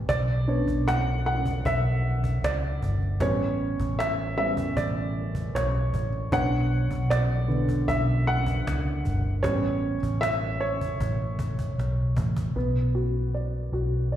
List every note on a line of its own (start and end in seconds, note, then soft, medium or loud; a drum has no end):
0.00 0.10 G3 soft
0.00 0.11 B3 soft
0.00 0.10 E5 medium
0.09 0.63 B1 medium
0.09 0.83 D5 medium
0.09 cajon bass loud
0.47 3.17 B3 soft
0.47 3.16 D4 soft
0.47 3.17 C#5 medium
0.67 1.60 B1 medium
0.67 cajon bass medium
0.88 1.23 F#5 loud
0.88 cajon slap loud
1.26 1.62 F#5 medium
1.46 cajon bass medium
1.65 2.39 B1 medium
1.65 2.45 E5 medium
1.65 cajon bass medium
2.24 cajon bass medium
2.43 2.79 C#2 medium
2.43 2.98 D5 medium
2.43 cajon slap loud
2.82 3.18 G1 medium
2.82 cajon bass medium
3.20 3.75 A1 medium
3.20 4.33 G3 medium
3.20 4.34 B3 soft
3.20 4.34 C#4 medium
3.20 4.01 C#5 medium
3.20 cajon bass loud
3.80 4.73 A1 medium
3.80 cajon bass medium
3.99 4.07 E5 medium
3.99 cajon slap loud
4.37 4.72 G3 soft
4.37 4.72 B3 soft
4.37 4.73 C#4 soft
4.37 4.78 E5 medium
4.57 cajon bass medium
4.77 5.50 A1 loud
4.77 5.57 D5 medium
4.77 cajon bass medium
5.35 cajon bass medium
5.55 5.91 B1 medium
5.55 6.09 C#5 medium
5.55 cajon slap loud
5.94 6.30 A1 medium
5.94 cajon bass medium
6.32 6.87 B1 loud
6.32 7.47 B3 soft
6.32 9.40 D4 medium
6.32 9.40 C#5 medium
6.32 7.13 F#5 loud
6.32 cajon bass loud
6.91 7.84 B1 medium
6.91 cajon bass medium
7.10 7.90 D5 medium
7.10 cajon slap loud
7.48 7.84 D3 medium
7.48 7.84 B3 soft
7.69 cajon bass medium
7.88 8.62 B1 loud
7.88 8.28 E5 medium
7.88 cajon bass medium
8.27 9.01 F#5 medium
8.46 cajon bass medium
8.66 9.02 C#2 medium
8.66 cajon slap loud
9.05 9.41 G1 medium
9.05 cajon bass medium
9.43 9.98 A1 loud
9.43 9.95 G3 medium
9.43 9.96 B3 soft
9.43 9.96 C#4 medium
9.43 10.23 C#5 medium
9.43 cajon bass loud
10.03 10.96 A1 medium
10.03 cajon bass medium
10.21 10.61 E5 loud
10.21 cajon slap loud
10.61 12.12 C#5 medium
10.81 cajon bass medium
11.00 11.74 A1 medium
11.00 cajon bass medium
11.39 cajon bass medium
11.59 cajon bass medium
11.78 12.14 B1 medium
11.78 cajon slap medium
12.17 12.53 A1 medium
12.17 cajon bass medium
12.37 cajon bass medium
12.56 13.69 B1 medium
12.56 14.16 B3 medium
12.95 13.72 F#4 soft
13.34 14.11 D5 soft
13.72 14.16 B1 medium
13.72 14.16 F#4 soft
14.12 14.16 D5 soft